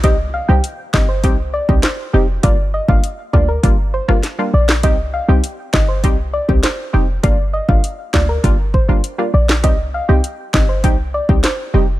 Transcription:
<<
  \new Staff \with { instrumentName = "Synth pluck" } { \time 4/4 \key c \minor \tempo 4 = 100 ees''16 r16 f''16 g''16 r8 ees''16 c''16 r8 d''16 r16 c''8. r16 | d''16 r16 ees''16 f''16 r8 d''16 bes'16 r8 c''16 r8. d''16 r16 | ees''16 r16 f''16 g''16 r8 ees''16 c''16 r8 d''16 r16 c''8. r16 | d''16 r16 ees''16 f''16 r8 d''16 bes'16 r8 c''16 r8. d''16 r16 |
ees''16 r16 f''16 g''16 r8 ees''16 c''16 r8 d''16 r16 c''8. r16 | }
  \new Staff \with { instrumentName = "Synth stab" } { \time 4/4 \key c \minor <g c' ees' g'>16 r8 <g c' ees' g'>16 r8 <g c' ees' g'>16 r16 <g c' ees' g'>16 r8 <g c' ees' g'>16 r8 <g c' ees' g'>16 r16 | <g bes d' f'>16 r8 <g bes d' f'>16 r8 <g bes d' f'>16 r16 <g bes d' f'>16 r8 <g bes d' f'>16 r16 <g bes d' f'>16 r8 | <g c' ees' g'>16 r8 <g c' ees' g'>16 r8 <g c' ees' g'>16 r16 <g c' ees' g'>16 r8 <g c' ees' g'>16 r8 <g c' ees' g'>16 r16 | <g bes d' f'>16 r8 <g bes d' f'>16 r8 <g bes d' f'>16 r16 <g bes d' f'>16 r8 <g bes d' f'>16 r16 <g bes d' f'>16 r8 |
<g c' ees' g'>16 r8 <g c' ees' g'>16 r8 <g c' ees' g'>16 r16 <g c' ees' g'>16 r8 <g c' ees' g'>16 r8 <g c' ees' g'>16 r16 | }
  \new Staff \with { instrumentName = "808-style bass" } { \clef bass \time 4/4 \key c \minor c,8. c,16 r8 g,,8 c,8. c,16 r8 f,,8 | g,,8. g,,16 r8 d,8 g,,8. g,,16 r8 bes,,8 | c,8. c,16 r8 g,,8 c,8. c,16 r8 f,,8 | g,,8. g,,16 r8 d,8 g,,8. g,,16 r8 bes,,8 |
c,8. c,16 r8 g,,8 c,8. c,16 r8 f,,8 | }
  \new DrumStaff \with { instrumentName = "Drums" } \drummode { \time 4/4 <hh bd>4 hh8 <hc bd sn>8 <hh bd>8. bd16 <hc hh sn>4 | <hh bd>8. bd16 hh8 bd8 <hh bd>8. ss16 <hh sn>8. <hc sn>16 | <hh bd>4 hh8 <hc bd sn>8 <hh bd>8. bd16 <hc hh sn>4 | <hh bd>8. bd16 hh8 <hc bd sn>8 <hh bd>8 bd8 hh8. <hc sn>16 |
<hh bd>4 hh8 <hc bd sn>8 <hh bd>8. bd16 <hc hh sn>4 | }
>>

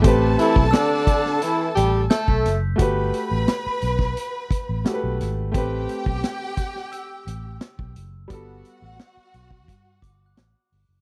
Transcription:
<<
  \new Staff \with { instrumentName = "Glockenspiel" } { \time 4/4 \key a \dorian \tempo 4 = 87 r4 e'''4. r8 g'''16 b'''8.~ | b'''8. r2. r16 | r2 e'''4. r8 | r2 r8 d'''16 fis'''4~ fis'''16 | }
  \new Staff \with { instrumentName = "Violin section" } { \time 4/4 \key a \dorian <a' a''>2.~ <a' a''>8 r8 | <b' b''>2.~ <b' b''>8 r8 | <g' g''>2.~ <g' g''>8 r8 | <fis' fis''>2.~ <fis' fis''>8 r8 | }
  \new Staff \with { instrumentName = "Grand piano" } { \time 4/4 \key a \dorian <a c' g' b'>1 | <a fis' g' b'>2. <a fis' g' a' b'>4 | <a c' g' b'>1 | <g b fis' a'>1 | }
  \new Staff \with { instrumentName = "Horn section" } { \time 4/4 \key a \dorian r8 <e e'>8 <d d'>4 <e e'>8 <g g'>8 <a a'>8. r16 | r1 | r1 | r1 | }
  \new Staff \with { instrumentName = "Fingered electric bass" } { \clef bass \time 4/4 \key a \dorian a,,8 r16 b,,16 r4. a,,8 r16 b,,16 fis,,8 | g,,8 r16 a,,16 r8 b,,8 r8. a,,16 r16 b,,16 gis,,8 | a,,8 r16 b,,16 r4. a,,8 r16 b,,16 fis,,8 | g,,8 r16 a,,16 r8 b,,8 g,8 g,,8 a,,16 r16 g,,16 fis,,16 | }
  \new DrumStaff \with { instrumentName = "Drums" } \drummode { \time 4/4 <hh bd>8 hh16 bd16 <hh sn>8 <hh bd>16 sn16 hh8 hh8 <hh sn>16 bd16 <hh sn>8 | <hh bd>8 hh8 <hh sn>8 hh16 <bd sn>16 hh8 <hh bd>8 <hh sn>8 <hh sn>8 | <hh bd>8 hh16 bd16 <hh sn>8 <hh bd>16 sn16 hh8 hh8 <hh sn>16 bd16 hh8 | <hh bd>8 hh8 <hh sn>8 hh16 bd16 <hh bd>8 <hh bd>8 <hh sn>8 hho8 | }
>>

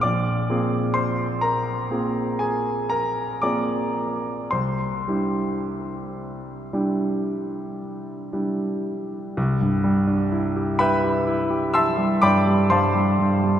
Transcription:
\new Staff \with { instrumentName = "Grand piano" } { \time 9/8 \key c \major \tempo 4. = 41 << { <d'' d'''>4 <c'' c'''>8 <bes' bes''>4 <aes' aes''>8 <bes' bes''>8 <d'' d'''>4 | <c'' c'''>2. r4. | r4. <b' e'' g'' b''>4 <e'' a'' c''' e'''>8 <d'' g'' b'' d'''>8 <c'' f'' a'' c'''>4 | } \\ { bes,,8 <bes c' f' aes'>4. <bes c' f' aes'>4. <bes c' f' aes'>4 | c,8 <g d' e' g'>4. <g d' e' g'>4. <g d' e' g'>4 | c,16 g,16 g16 d'16 e'16 g'16 e'16 g'16 e'16 g'16 e'16 g16 g,16 g16 g,16 g16 g,16 g16 | } >> }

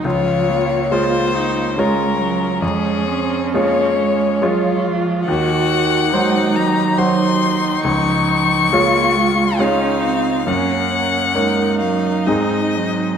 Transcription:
<<
  \new Staff \with { instrumentName = "Violin" } { \time 3/4 \key des \major \tempo 4 = 69 des''4 c''4 bes'4 | aes'4 des''4. r8 | ges''4. bes''8 c'''4 | des'''2 f''4 |
ges''4. f''8 ees''4 | }
  \new Staff \with { instrumentName = "Grand piano" } { \time 3/4 \key des \major des,4 <aes f' des''>4 <aes f' des''>4 | f,4 <aes f' des''>4 <aes f' des''>4 | ees,4 <ges ges' c''>4 <ges ges' c''>4 | des,4 <aes f' des''>4 <aes f' des''>4 |
ges,4 <bes des' des''>4 <aes, aes c' aes'>4 | }
  \new Staff \with { instrumentName = "Viola" } { \time 3/4 \key des \major f'4 f'8 ees'8 des'4 | des'2 f'4 | ges'4 ees'4 ees'4~ | ees'4 f'4 ees'4 |
des'8 des'8 ees'2 | }
  \new Staff \with { instrumentName = "Cello" } { \clef bass \time 3/4 \key des \major f8 bes4. aes8 ges8 | aes8 c'8 bes8 aes8 ges8 f8 | ees4 aes8 ges4. | f4 bes8 aes8 des'8 c'8 |
bes4 aes8 ges8 aes8 ges8 | }
>>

